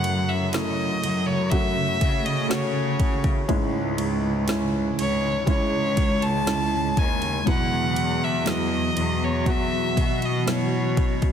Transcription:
Already playing: F#2 C#3 A3 C#4 F#4 F#5
0.04 ride
0.29 E5
0.52 A3 C#4 E4 D#5, snare, ride
1.03 F#2, ride
1.26 C#5
1.50 A3 C#4 E4 F#4 E5, kick, ride
2.01 C#3, kick, ride
2.26 D#5, ride
2.48 A3 C#4 F#4 C#5, snare, ride
3.00 kick, ride
3.24 kick, ride
3.48 C#2 G#2 C#3 G#3 C#4 E4, kick, ride
3.98 ride
4.48 G#3 C#4 E4, snare, ride
4.98 C#2 C#5, ride
5.46 C#2 G#3 C#4 E4 C#5, kick, ride
5.97 kick, ride
6.22 A5, ride
6.46 G#3 C#4 E4, snare, ride
6.97 D#2 G#5, kick, ride
7.22 ride
7.46 E2 B2 E3 F#3 B3 E4 F#4 F#5, kick, ride
7.96 ride
8.24 E5
8.46 F#3 B3 E4, snare, ride
8.50 D#5
8.96 E2, ride
9.24 C#5
9.46 F#3 B3 C#4 F#4, kick, ride
9.50 E5
9.97 B2, kick, ride
10.22 D#5, ride
10.46 F#3 B3 E4, snare, ride
10.50 C#5
10.97 kick, ride
11.22 kick, ride

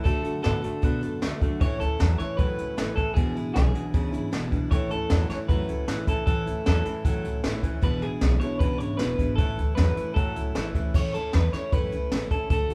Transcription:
0.04 D2 D3 A3 D4 F#4 A4, kick, closed hi-hat
0.23 F#2 A3 D4 F#4, closed hi-hat
0.42 A2 D3 A3 B3 D4 F#4 A4, snare, closed hi-hat
0.62 D3 A3 D4 F#4, muted upright bass stroke, closed hi-hat
0.82 B2 D3 A3 B3 D4 F#4, kick, closed hi-hat
1.01 F#2 A3 D4 F#4, closed hi-hat
1.22 D2 D3 A3 D4 F#4, snare, closed hi-hat
1.41 F#2 D3 A3 D4 F#4, kick, closed hi-hat
1.61 A1 A2 E3 A3 C#4 E4 C#5, kick, closed hi-hat
1.80 D2 A3 C#4 E4 A4, closed hi-hat
1.99 E2 A2 E3 F#3 A3 C#4 E4, snare, closed hi-hat
2.18 A2 E3 A3 C#4 E4 C#5, muted upright bass stroke, closed hi-hat
2.37 F#2 A2 E3 F#3 A3 C#4 E4 B4, kick, closed hi-hat
2.58 C#2 A3 C#4 E4, closed hi-hat
2.77 A1 A2 E3 A3 C#4 E4, snare, closed hi-hat
2.96 C#2 A2 E3 A3 C#4 E4 A4, kick, closed hi-hat
3.14 E1 E2 B2 E3 G#3 D4 E4 G#4, kick, closed hi-hat
3.18 B2
3.35 A1 E3 G#3 D4 E4, closed hi-hat
3.54 B1 E2 C#3 E3 G#3 D4 E4 G#4, snare, closed hi-hat
3.73 E2 B2 E3 G#3 D4 E4, muted upright bass stroke, closed hi-hat
3.94 C#2 E2 B2 C#3 E3 G#3 D4 E4, kick, closed hi-hat
4.12 G#1 E3 G#3 D4 E4, closed hi-hat
4.32 E1 E2 B2 E3 G#3 D4 E4, snare, closed hi-hat
4.51 B1 E2 B2 E3 G#3 D4 E4, kick, closed hi-hat
4.71 A1 A2 E3 A3 C#4 E4 C#5, kick, closed hi-hat
4.91 D2 A3 C#4 E4 A4, closed hi-hat
5.10 E2 A2 E3 F#3 A3 C#4 E4, snare, closed hi-hat
5.30 A2 E3 A3 C#4 E4 C#5, muted upright bass stroke, snare, closed hi-hat
5.48 F#2 A2 E3 F#3 A3 C#4 E4 B4, kick, closed hi-hat
5.67 C#2 A3 C#4 E4, closed hi-hat
5.88 A1 A2 E3 A3 C#4 E4, snare, closed hi-hat
6.07 C#2 A2 E3 A3 C#4 E4 A4, kick, closed hi-hat
6.26 A1 A2 E3 A3 C#4 E4 A4, kick, closed hi-hat
6.46 D2 A3 C#4 E4, closed hi-hat
6.66 E2 A2 E3 F#3 A3 C#4 E4 A4, snare, closed hi-hat
6.85 A2 E3 A3 C#4 E4, muted upright bass stroke, closed hi-hat
7.04 F#2 A2 E3 F#3 A3 C#4 E4, kick, closed hi-hat
7.24 C#2 A3 C#4 E4, closed hi-hat
7.44 A1 A2 E3 A3 C#4 E4, snare, closed hi-hat
7.63 D2 A2 E3 A3 C#4 E4, kick, closed hi-hat
7.81 E1 E2 B2 E3 G#3 D4 E4 B4, kick, closed hi-hat
8.02 A1 E3 G#3 D4 E4 G#4, closed hi-hat
8.21 B1 E2 C#3 E3 G#3 D4 E4, snare, closed hi-hat
8.40 E2 B2 E3 G#3 D4 E4 C#5, closed hi-hat
8.59 C#2 E2 B2 C#3 E3 G#3 D4 E4 B4, kick, closed hi-hat
8.78 G#1 D4 E4 C#5, closed hi-hat
8.82 E3 G#3
8.97 E1 E2 B2 E3 B4, snare, closed hi-hat
9.02 G#3 D4 E4
9.18 G#1 E2 B2 E3 G#3 D4 E4, kick, closed hi-hat
9.36 A1 A2 E3 A3 A4, kick, closed hi-hat
9.40 C#4 E4
9.58 D2 A3 C#4 E4, closed hi-hat
9.75 E2 A2 E3 F#3 A3 C#4 B4, snare, closed hi-hat
9.79 E4
9.97 A2 E3 A3 C#4 E4, muted upright bass stroke, closed hi-hat
10.14 F#2 A2 E3 F#3 A3 C#4 A4, kick, closed hi-hat
10.18 E4
10.36 C#2 A3 C#4 E4, closed hi-hat
10.55 A1 A2 E3 A3 C#4 E4, snare, closed hi-hat
10.75 C#2 A2 E3 A3 C#4 E4, kick, closed hi-hat
10.94 A1 A2 E3 A3 C#4 E4 C#5, kick, crash
11.14 D2 A3 C#4 E4 A4, closed hi-hat
11.33 E2 E3 A3 C#4 E4 B4, snare, closed hi-hat
11.53 A3 C#4 E4 C#5, muted upright bass stroke, snare, closed hi-hat
11.72 F#2 A2 E3 A3 C#4 E4 B4, kick, closed hi-hat
11.92 C#2 A3 C#4 E4, closed hi-hat
12.12 A1 E3 A3 C#4 E4, snare, closed hi-hat
12.31 C#2 A3 C#4 E4 A4, kick, closed hi-hat
12.50 D2 D3 A3 D4 F#4 A4, kick, closed hi-hat
12.70 F#2 F#4, closed hi-hat

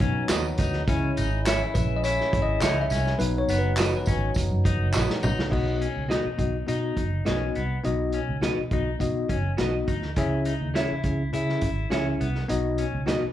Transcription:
Already playing: F#3 B3 D#4
0.00 B2 F#3 B3 C#4 D#4, kick
0.29 D#2 F#4 B4 D#5, snare, clap, closed hi-hat, tambourine
0.58 D2 D#4, kick, snare, closed hi-hat, tambourine
0.73 snare
0.88 C#2 G#3 C#4 E4, kick, closed hi-hat, tambourine
1.17 G#1 D#4, closed hi-hat, tambourine
1.45 E4 G#4 C#5 E5, snare, clap, closed hi-hat, tambourine
1.74 A#1 B4, kick, closed hi-hat, tambourine
1.97 D#5
2.04 E4 C#5, closed hi-hat, tambourine
2.21 snare
2.33 G#1, kick, closed hi-hat
2.42 D#5
2.61 C#2 D#4 G#4 C#5 E5, snare, clap, closed hi-hat, tambourine
2.81 E5
2.90 C2 C#4, snare, closed hi-hat, tambourine
3.06 snare
3.18 B1 F#3 B3 D#4 B4, closed hi-hat, tambourine
3.38 C#5
3.48 F#1 B3, closed hi-hat, tambourine
3.59 B4
3.77 F#4 B4 D#5, snare, clap, closed hi-hat, tambourine
3.97 B4
4.06 G#1 C#4, kick, closed hi-hat, tambourine
4.34 F#1, kick, closed hi-hat, tambourine
4.51 F#2
4.65 D#4, kick, closed hi-hat
4.80 F#1
4.93 A#1 F#4 B4 D#5, snare, clap, tambourine
5.10 snare
5.23 B1 D#4, mid tom, tambourine
5.38 C#2, snare
5.50 B1 B2 B3 D#4 F#4 D#5, kick, crash
5.81 C#4, closed hi-hat
5.96 C#2
6.08 B3 D#4 F#4 B4 D#5, snare, closed hi-hat
6.25 muted fingered electric bass stroke
6.37 B1 B3 D#4 F#4 D#5, kick, closed hi-hat
6.67 B2 B3 D#4 F#4 D#5, closed hi-hat
6.97 F#1, kick, closed hi-hat
7.25 B1 B3 C#4 D#4 F#4 B4 D#5, snare, closed hi-hat
7.55 C2 B3, closed hi-hat
7.83 B1 B2 B3 D#4 F#4 D#5, closed hi-hat
8.12 C#4, closed hi-hat
8.29 C#2
8.41 B3 D#4 F#4 B4 D#5, snare, closed hi-hat
8.58 muted fingered electric bass stroke
8.71 B1 B3 D#4 F#4 D#5, kick, closed hi-hat
8.99 B2 B3 D#4 F#4 D#5, kick, closed hi-hat
9.29 F#1 C#4, kick, closed hi-hat
9.57 B1 B3 D#4 F#4 B4 D#5, snare, closed hi-hat
9.88 D2 D#4, kick, closed hi-hat
10.02 snare
10.16 C#2 C#3 C#4 E4 G#4 E5, kick, closed hi-hat
10.45 D#4, closed hi-hat
10.61 D#2
10.74 C#4 E4 G#4 C#5 E5, snare, closed hi-hat
10.91 muted fingered electric bass stroke
11.04 C#2 C#4 E4 G#4 E5, kick, closed hi-hat
11.33 C#3 C#4 E4 G#4 E5, closed hi-hat
11.49 snare
11.61 G#1, kick, closed hi-hat
11.90 C#2 C#4 E4 G#4 C#5 E5, snare, closed hi-hat
12.21 C2 B3, closed hi-hat
12.35 snare
12.48 B1 B2 B3 D#4 F#4 D#5, closed hi-hat
12.78 C#4, closed hi-hat
12.93 C#2
13.06 B3 D#4 F#4 B4 D#5, snare, closed hi-hat
13.23 muted fingered electric bass stroke

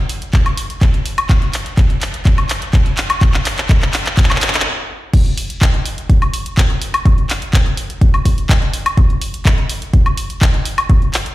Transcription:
0.09 open hi-hat
0.22 closed hi-hat
0.33 kick, clap, closed hi-hat
0.46 closed hi-hat, high woodblock
0.57 open hi-hat
0.70 closed hi-hat
0.82 kick, clap, closed hi-hat
0.94 closed hi-hat
1.06 open hi-hat
1.18 closed hi-hat, high woodblock
1.29 kick, clap, closed hi-hat
1.42 closed hi-hat
1.53 clap, open hi-hat
1.66 closed hi-hat
1.77 kick, clap, closed hi-hat
1.90 closed hi-hat
2.02 clap, open hi-hat
2.14 closed hi-hat
2.25 kick, clap, closed hi-hat
2.38 closed hi-hat, high woodblock
2.49 clap, open hi-hat
2.62 closed hi-hat
2.73 kick, clap, closed hi-hat
2.86 closed hi-hat
2.97 clap, open hi-hat
3.10 closed hi-hat, high woodblock
3.21 kick, clap, closed hi-hat
3.34 clap, closed hi-hat
3.45 clap, open hi-hat
3.58 clap, closed hi-hat
3.69 kick, clap, closed hi-hat
3.82 clap, closed hi-hat
3.93 clap, open hi-hat
4.06 clap, closed hi-hat
4.17 kick, clap, closed hi-hat
4.24 clap
4.30 clap, closed hi-hat, high woodblock
4.36 clap
4.41 clap, open hi-hat
4.48 clap
4.54 clap, closed hi-hat
4.60 clap
5.13 kick, closed hi-hat, crash
5.26 closed hi-hat
5.37 open hi-hat
5.50 closed hi-hat
5.62 kick, clap, closed hi-hat
5.74 closed hi-hat
5.86 open hi-hat
5.98 closed hi-hat
6.10 kick, closed hi-hat
6.22 closed hi-hat, high woodblock
6.34 open hi-hat
6.46 closed hi-hat
6.58 kick, clap, closed hi-hat
6.70 closed hi-hat
6.82 open hi-hat
6.94 closed hi-hat, high woodblock
7.05 kick, closed hi-hat
7.18 closed hi-hat
7.30 clap, open hi-hat
7.42 closed hi-hat
7.53 kick, clap, closed hi-hat
7.66 closed hi-hat
7.77 open hi-hat
7.90 closed hi-hat
8.01 kick, closed hi-hat
8.14 closed hi-hat, high woodblock
8.25 kick, open hi-hat
8.38 closed hi-hat
8.49 kick, clap, closed hi-hat
8.62 closed hi-hat
8.73 open hi-hat
8.86 closed hi-hat, high woodblock
8.97 kick, closed hi-hat
9.10 closed hi-hat
9.21 open hi-hat
9.34 closed hi-hat
9.45 kick, clap, closed hi-hat
9.58 closed hi-hat
9.69 open hi-hat
9.82 closed hi-hat
9.93 kick, closed hi-hat
10.06 closed hi-hat, high woodblock
10.17 open hi-hat
10.30 closed hi-hat
10.42 kick, clap, closed hi-hat
10.54 closed hi-hat
10.65 open hi-hat
10.78 closed hi-hat, high woodblock
10.90 kick, closed hi-hat
11.02 closed hi-hat
11.14 clap, open hi-hat
11.26 closed hi-hat

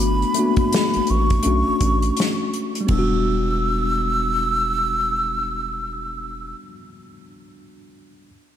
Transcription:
Already playing: G1 A3 B3 D4 F#4 B5
0.00 closed hi-hat
0.22 closed hi-hat
0.34 A3 A#3 D4, closed hi-hat
0.39 B3 F#4
0.56 A1 B5, kick, closed hi-hat
0.72 snare, closed hi-hat
0.94 A1, closed hi-hat
1.07 A1 C#6, closed hi-hat
1.30 kick, closed hi-hat
1.43 B1 A3 C#4 D4, closed hi-hat
1.47 F#4
1.68 A1
1.81 A1, kick, closed hi-hat
2.02 closed hi-hat
2.17 snare, closed hi-hat
2.53 closed hi-hat
2.75 closed hi-hat
2.81 G3
2.87 E1 B3, kick, ride
2.91 D4 E6
2.99 F#4

